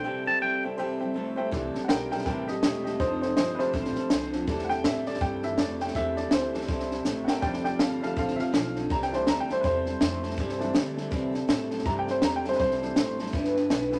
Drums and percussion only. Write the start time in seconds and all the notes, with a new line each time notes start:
1.52 kick, snare
1.75 snare
1.89 snare, hi-hat pedal
2.11 snare
2.18 snare
2.26 kick, snare
2.48 snare
2.63 snare, hi-hat pedal
2.86 snare
3.00 kick, snare
3.22 snare
3.37 snare, hi-hat pedal
3.59 snare
3.73 kick, snare
3.85 snare
3.95 snare
4.10 snare, hi-hat pedal
4.33 snare
4.47 kick, snare
4.59 snare
4.70 snare
4.84 snare, hi-hat pedal
5.06 snare
5.14 snare
5.21 kick, snare
5.43 snare
5.58 snare, hi-hat pedal
5.80 snare
5.88 snare
5.95 kick, snare
6.17 snare
6.31 snare, hi-hat pedal
6.54 snare
6.61 snare
6.68 kick, snare
6.80 snare
6.91 snare
7.05 snare, hi-hat pedal
7.28 snare
7.42 kick, snare
7.53 snare
7.65 snare
7.79 snare, hi-hat pedal
8.03 snare
8.17 kick, snare
8.28 snare
8.39 snare
8.54 snare, hi-hat pedal
8.76 snare
8.90 kick, snare
9.02 snare
9.13 snare
9.27 snare, hi-hat pedal
9.49 snare
9.64 kick, snare
9.86 snare
10.01 snare, hi-hat pedal
10.23 snare
10.31 snare
10.38 kick, snare
10.49 snare
10.61 snare
10.75 snare, hi-hat pedal
10.98 snare
11.12 kick, snare
11.34 snare
11.49 snare, hi-hat pedal
11.71 snare
11.79 snare
11.85 kick, snare
12.08 snare
12.22 snare, hi-hat pedal
12.45 snare
12.52 snare
12.59 kick, snare
12.71 snare
12.82 snare
12.96 snare, hi-hat pedal
13.19 snare
13.26 snare
13.33 kick, snare
13.45 snare
13.56 snare
13.70 snare, hi-hat pedal
13.92 snare